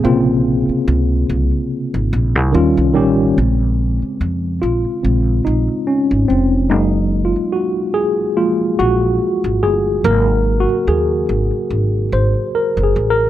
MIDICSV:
0, 0, Header, 1, 4, 480
1, 0, Start_track
1, 0, Key_signature, -5, "minor"
1, 0, Tempo, 833333
1, 19, Time_signature, 4, 2, 24, 8
1, 7659, End_track
2, 0, Start_track
2, 0, Title_t, "Tine electric piano"
2, 0, Program_c, 0, 4
2, 0, Control_c, 0, 64, 127
2, 0, Note_on_c, 0, 49, 77
2, 0, Note_on_c, 0, 58, 76
2, 0, Note_on_c, 0, 60, 75
2, 0, Note_on_c, 0, 68, 90
2, 15, Note_on_c, 0, 48, 66
2, 21, Note_off_c, 0, 58, 0
2, 21, Note_on_c, 0, 58, 77
2, 25, Note_off_c, 0, 60, 0
2, 25, Note_on_c, 0, 60, 75
2, 31, Note_on_c, 0, 65, 87
2, 54, Note_off_c, 0, 49, 0
2, 54, Note_on_c, 0, 49, 84
2, 58, Note_off_c, 0, 48, 0
2, 786, Note_off_c, 0, 58, 0
2, 788, Note_off_c, 0, 60, 0
2, 791, Note_off_c, 0, 65, 0
2, 803, Note_off_c, 0, 49, 0
2, 1453, Note_on_c, 0, 51, 88
2, 1459, Note_on_c, 0, 55, 77
2, 1464, Note_on_c, 0, 61, 77
2, 1466, Control_c, 0, 64, 0
2, 1468, Note_on_c, 0, 65, 95
2, 1471, Note_off_c, 0, 68, 0
2, 1573, Control_c, 0, 64, 127
2, 1652, Note_off_c, 0, 51, 0
2, 1655, Note_off_c, 0, 55, 0
2, 1658, Note_off_c, 0, 61, 0
2, 1660, Note_off_c, 0, 65, 0
2, 1690, Note_on_c, 0, 51, 81
2, 1695, Note_on_c, 0, 55, 76
2, 1701, Note_on_c, 0, 61, 79
2, 1705, Note_on_c, 0, 67, 89
2, 1890, Note_off_c, 0, 51, 0
2, 1892, Note_off_c, 0, 55, 0
2, 1895, Note_off_c, 0, 61, 0
2, 1897, Note_off_c, 0, 67, 0
2, 1936, Note_on_c, 0, 49, 53
2, 1943, Note_on_c, 0, 56, 47
2, 1946, Note_on_c, 0, 60, 56
2, 1947, Control_c, 0, 64, 0
2, 2060, Control_c, 0, 64, 127
2, 2659, Note_on_c, 0, 65, 80
2, 2889, Note_off_c, 0, 49, 0
2, 2892, Note_off_c, 0, 56, 0
2, 2893, Note_off_c, 0, 60, 0
2, 2896, Note_on_c, 0, 49, 42
2, 2899, Note_on_c, 0, 56, 39
2, 2900, Note_on_c, 0, 60, 50
2, 3114, Note_off_c, 0, 49, 0
2, 3116, Note_off_c, 0, 56, 0
2, 3116, Note_off_c, 0, 60, 0
2, 3138, Note_on_c, 0, 63, 76
2, 3153, Note_off_c, 0, 65, 0
2, 3382, Note_on_c, 0, 61, 83
2, 3385, Note_off_c, 0, 63, 0
2, 3618, Note_on_c, 0, 60, 81
2, 3627, Note_off_c, 0, 61, 0
2, 3842, Note_off_c, 0, 60, 0
2, 3852, Note_on_c, 0, 54, 55
2, 3857, Note_on_c, 0, 56, 46
2, 3857, Note_on_c, 0, 63, 86
2, 3858, Note_on_c, 0, 58, 58
2, 3866, Control_c, 0, 64, 0
2, 3953, Control_c, 0, 64, 127
2, 4176, Note_on_c, 0, 65, 76
2, 4188, Note_off_c, 0, 63, 0
2, 4334, Note_on_c, 0, 66, 83
2, 4342, Note_off_c, 0, 65, 0
2, 4443, Note_off_c, 0, 66, 0
2, 4573, Note_on_c, 0, 68, 98
2, 4813, Note_off_c, 0, 56, 0
2, 4815, Note_off_c, 0, 58, 0
2, 4817, Note_on_c, 0, 53, 45
2, 4820, Note_on_c, 0, 56, 41
2, 4821, Note_on_c, 0, 65, 90
2, 4822, Note_on_c, 0, 58, 52
2, 4823, Note_off_c, 0, 68, 0
2, 5035, Note_off_c, 0, 53, 0
2, 5036, Note_off_c, 0, 56, 0
2, 5037, Note_off_c, 0, 58, 0
2, 5043, Note_off_c, 0, 65, 0
2, 5063, Note_on_c, 0, 66, 93
2, 5518, Note_off_c, 0, 66, 0
2, 5546, Note_on_c, 0, 68, 91
2, 5753, Note_off_c, 0, 54, 0
2, 5781, Note_on_c, 0, 49, 52
2, 5785, Note_on_c, 0, 54, 53
2, 5786, Control_c, 0, 64, 0
2, 5786, Note_on_c, 0, 58, 65
2, 5788, Note_on_c, 0, 70, 113
2, 5790, Note_off_c, 0, 68, 0
2, 5900, Control_c, 0, 64, 127
2, 6081, Note_off_c, 0, 70, 0
2, 6107, Note_on_c, 0, 66, 98
2, 6267, Note_on_c, 0, 68, 91
2, 6268, Note_off_c, 0, 66, 0
2, 6720, Note_off_c, 0, 68, 0
2, 6988, Note_on_c, 0, 72, 83
2, 7207, Note_off_c, 0, 72, 0
2, 7229, Note_on_c, 0, 70, 85
2, 7388, Note_off_c, 0, 70, 0
2, 7392, Note_on_c, 0, 68, 80
2, 7461, Note_off_c, 0, 68, 0
2, 7547, Note_on_c, 0, 70, 88
2, 7659, Note_off_c, 0, 49, 0
2, 7659, Note_off_c, 0, 54, 0
2, 7659, Note_off_c, 0, 58, 0
2, 7659, Note_off_c, 0, 70, 0
2, 7659, End_track
3, 0, Start_track
3, 0, Title_t, "Upright bass"
3, 0, Program_c, 1, 32
3, 26, Note_on_c, 1, 34, 89
3, 371, Note_off_c, 1, 34, 0
3, 505, Note_on_c, 1, 37, 89
3, 721, Note_off_c, 1, 37, 0
3, 746, Note_on_c, 1, 36, 87
3, 863, Note_off_c, 1, 36, 0
3, 1118, Note_on_c, 1, 32, 83
3, 1213, Note_off_c, 1, 32, 0
3, 1226, Note_on_c, 1, 34, 90
3, 1356, Note_off_c, 1, 34, 0
3, 1356, Note_on_c, 1, 36, 83
3, 1452, Note_off_c, 1, 36, 0
3, 1465, Note_on_c, 1, 39, 90
3, 1583, Note_off_c, 1, 39, 0
3, 1597, Note_on_c, 1, 36, 83
3, 1706, Note_off_c, 1, 36, 0
3, 1706, Note_on_c, 1, 33, 83
3, 1922, Note_off_c, 1, 33, 0
3, 1945, Note_on_c, 1, 34, 87
3, 2291, Note_off_c, 1, 34, 0
3, 2423, Note_on_c, 1, 41, 81
3, 2640, Note_off_c, 1, 41, 0
3, 2666, Note_on_c, 1, 34, 79
3, 2783, Note_off_c, 1, 34, 0
3, 2906, Note_on_c, 1, 34, 86
3, 3122, Note_off_c, 1, 34, 0
3, 3148, Note_on_c, 1, 34, 82
3, 3264, Note_off_c, 1, 34, 0
3, 3519, Note_on_c, 1, 32, 80
3, 3614, Note_off_c, 1, 32, 0
3, 3627, Note_on_c, 1, 29, 79
3, 3865, Note_off_c, 1, 29, 0
3, 3865, Note_on_c, 1, 30, 85
3, 4210, Note_off_c, 1, 30, 0
3, 5065, Note_on_c, 1, 34, 81
3, 5281, Note_off_c, 1, 34, 0
3, 5438, Note_on_c, 1, 32, 84
3, 5545, Note_off_c, 1, 32, 0
3, 5545, Note_on_c, 1, 31, 80
3, 5761, Note_off_c, 1, 31, 0
3, 5785, Note_on_c, 1, 32, 104
3, 6130, Note_off_c, 1, 32, 0
3, 6264, Note_on_c, 1, 39, 88
3, 6481, Note_off_c, 1, 39, 0
3, 6503, Note_on_c, 1, 32, 90
3, 6621, Note_off_c, 1, 32, 0
3, 6742, Note_on_c, 1, 32, 81
3, 6960, Note_off_c, 1, 32, 0
3, 6983, Note_on_c, 1, 32, 87
3, 7101, Note_off_c, 1, 32, 0
3, 7355, Note_on_c, 1, 30, 82
3, 7452, Note_off_c, 1, 30, 0
3, 7465, Note_on_c, 1, 33, 86
3, 7659, Note_off_c, 1, 33, 0
3, 7659, End_track
4, 0, Start_track
4, 0, Title_t, "Muted upright bass strokes"
4, 398, Note_on_c, 9, 29, 44
4, 455, Note_off_c, 9, 29, 0
4, 2317, Note_on_c, 9, 29, 39
4, 2375, Note_off_c, 9, 29, 0
4, 4238, Note_on_c, 9, 29, 43
4, 4296, Note_off_c, 9, 29, 0
4, 6156, Note_on_c, 9, 29, 45
4, 6214, Note_off_c, 9, 29, 0
4, 7659, End_track
0, 0, End_of_file